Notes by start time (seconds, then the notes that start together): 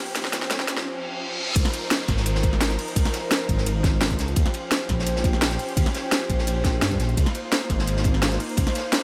Already playing: F3 C#4 G4 C5, riser
0.15 D#2, snare, closed hi-hat, ride
0.25 snare
0.32 snare, closed hi-hat, ride
0.42 snare
0.50 snare, closed hi-hat, ride
0.60 snare
0.68 A#1, snare, closed hi-hat, ride
0.76 snare
0.86 reverse cymbal
1.55 C#2 F3 D#4 A#4 C5, kick, closed hi-hat, ride, downlifter
1.65 snare, closed hi-hat
1.74 closed hi-hat, ride
1.91 snare, closed hi-hat, ride
2.08 G#1, kick, snare, closed hi-hat, ride
2.17 snare
2.26 closed hi-hat, ride
2.35 snare
2.43 kick, closed hi-hat, ride
2.53 snare
2.60 snare, closed hi-hat, ride
2.70 snare, closed hi-hat
2.79 closed hi-hat, open hi-hat
2.88 closed hi-hat
2.96 C#2, kick, closed hi-hat, ride
3.05 snare, closed hi-hat
3.13 snare, closed hi-hat, ride
3.31 snare, closed hi-hat, ride
3.49 G#1, kick, closed hi-hat, ride
3.58 snare
3.66 closed hi-hat, ride
3.84 kick, snare, closed hi-hat, ride
4.01 snare, closed hi-hat, ride
4.11 kick, closed hi-hat
4.19 C#2, snare, closed hi-hat, ride
4.28 closed hi-hat
4.36 D#2 C#4 G4, kick, closed hi-hat, ride
4.46 snare, closed hi-hat
4.54 closed hi-hat, ride
4.71 snare, closed hi-hat, ride
4.89 A#1, kick, snare, closed hi-hat, ride
4.99 snare
5.06 closed hi-hat, ride
5.16 snare
5.24 kick, closed hi-hat, ride
5.33 snare
5.42 snare, closed hi-hat, ride
5.51 snare, closed hi-hat
5.59 closed hi-hat, open hi-hat
5.69 closed hi-hat
5.77 D#2, kick, closed hi-hat, ride
5.86 snare, closed hi-hat
5.95 snare, closed hi-hat, ride
6.11 snare, closed hi-hat, ride
6.29 A#1, kick, closed hi-hat, ride
6.39 snare
6.47 closed hi-hat, ride
6.64 kick, snare, closed hi-hat, ride
6.82 G2, snare, closed hi-hat, ride
6.91 kick, closed hi-hat
7.00 A#1, snare, closed hi-hat, ride
7.09 closed hi-hat
7.17 C#2 A#3 D#4 F4, kick, closed hi-hat, ride
7.26 snare, closed hi-hat
7.35 closed hi-hat, ride
7.52 snare, closed hi-hat, ride
7.70 G#1, kick, snare, closed hi-hat, ride
7.79 snare
7.87 closed hi-hat, ride
7.97 snare
8.04 kick, closed hi-hat, ride
8.14 snare
8.22 snare, closed hi-hat, ride
8.32 snare, closed hi-hat
8.40 closed hi-hat, open hi-hat
8.49 closed hi-hat
8.57 C#2, kick, closed hi-hat, ride
8.67 snare, closed hi-hat
8.75 snare, closed hi-hat, ride
8.92 snare, closed hi-hat, ride